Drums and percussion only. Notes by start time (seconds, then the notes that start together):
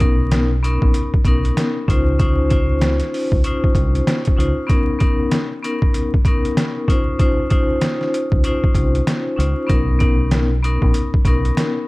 0.00 kick, closed hi-hat
0.31 snare, closed hi-hat
0.64 closed hi-hat
0.82 kick
0.94 closed hi-hat
1.14 kick
1.25 kick, closed hi-hat
1.45 closed hi-hat
1.57 snare, closed hi-hat
1.88 kick, closed hi-hat
2.19 kick, closed hi-hat
2.50 kick, closed hi-hat
2.81 snare, closed hi-hat
3.00 snare, closed hi-hat
3.14 open hi-hat
3.32 kick
3.44 closed hi-hat
3.64 kick
3.75 kick, closed hi-hat
3.95 closed hi-hat
4.07 snare, closed hi-hat
4.25 kick, closed hi-hat
4.40 closed hi-hat
4.70 kick, closed hi-hat
5.00 kick, closed hi-hat
5.31 snare, closed hi-hat
5.64 closed hi-hat
5.82 kick
5.94 closed hi-hat
6.14 kick
6.25 kick, closed hi-hat
6.45 closed hi-hat
6.57 snare, closed hi-hat
6.88 kick, closed hi-hat
7.20 kick, closed hi-hat
7.50 kick, closed hi-hat
7.81 snare, closed hi-hat
8.01 snare
8.14 closed hi-hat
8.32 kick
8.44 closed hi-hat
8.64 kick
8.75 kick, closed hi-hat
8.95 closed hi-hat
9.07 snare, closed hi-hat
9.40 closed hi-hat
9.69 kick, closed hi-hat
10.00 kick, closed hi-hat
10.31 snare, closed hi-hat
10.64 closed hi-hat
10.82 kick
10.94 closed hi-hat
11.14 kick
11.25 kick, closed hi-hat
11.45 closed hi-hat
11.57 snare, closed hi-hat